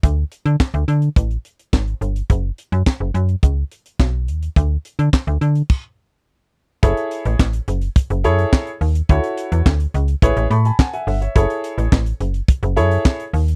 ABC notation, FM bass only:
X:1
M:4/4
L:1/16
Q:1/4=106
K:F#m
V:1 name="FM bass" clef=bass
D,,2 z D, z D,, D,2 A,,,2 z2 G,,,2 =G,,,2 | F,,,2 z F,, z F,,, F,,2 C,,2 z2 B,,,2 ^D,,2 | D,,2 z D, z D,, D,2 z8 | F,,, z2 A,,, A,,,2 F,,,2 z F,,, F,,2 z2 ^D,,2 |
D,, z2 E,, D,,2 C,,2 A,,, A,,, A,,2 z2 =G,,,2 | F,,, z2 A,,, A,,,2 F,,,2 z F,,, F,,2 z2 ^D,,2 |]